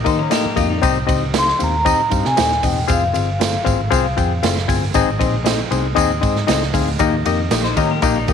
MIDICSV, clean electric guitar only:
0, 0, Header, 1, 2, 480
1, 0, Start_track
1, 0, Key_signature, -4, "major"
1, 0, Tempo, 514183
1, 781, Time_signature, 4, 2, 24, 8
1, 7778, End_track
2, 0, Start_track
2, 0, Title_t, "Clean electric guitar"
2, 0, Program_c, 0, 27
2, 60, Note_on_c, 0, 72, 72
2, 67, Note_on_c, 0, 63, 60
2, 172, Note_off_c, 0, 63, 0
2, 174, Note_off_c, 0, 72, 0
2, 176, Note_on_c, 0, 61, 70
2, 178, Note_on_c, 0, 70, 69
2, 292, Note_off_c, 0, 70, 0
2, 293, Note_off_c, 0, 61, 0
2, 299, Note_on_c, 0, 67, 95
2, 303, Note_on_c, 0, 58, 79
2, 528, Note_off_c, 0, 67, 0
2, 530, Note_off_c, 0, 58, 0
2, 541, Note_on_c, 0, 65, 90
2, 653, Note_off_c, 0, 65, 0
2, 657, Note_on_c, 0, 63, 78
2, 665, Note_on_c, 0, 55, 67
2, 887, Note_off_c, 0, 63, 0
2, 891, Note_off_c, 0, 55, 0
2, 7133, Note_on_c, 0, 72, 75
2, 7140, Note_on_c, 0, 63, 67
2, 7250, Note_off_c, 0, 72, 0
2, 7253, Note_on_c, 0, 70, 84
2, 7254, Note_off_c, 0, 63, 0
2, 7258, Note_on_c, 0, 61, 76
2, 7370, Note_off_c, 0, 70, 0
2, 7373, Note_off_c, 0, 61, 0
2, 7382, Note_on_c, 0, 58, 74
2, 7383, Note_on_c, 0, 67, 83
2, 7489, Note_off_c, 0, 67, 0
2, 7492, Note_on_c, 0, 65, 83
2, 7496, Note_off_c, 0, 58, 0
2, 7610, Note_off_c, 0, 65, 0
2, 7613, Note_on_c, 0, 63, 74
2, 7621, Note_on_c, 0, 55, 68
2, 7778, Note_off_c, 0, 55, 0
2, 7778, Note_off_c, 0, 63, 0
2, 7778, End_track
0, 0, End_of_file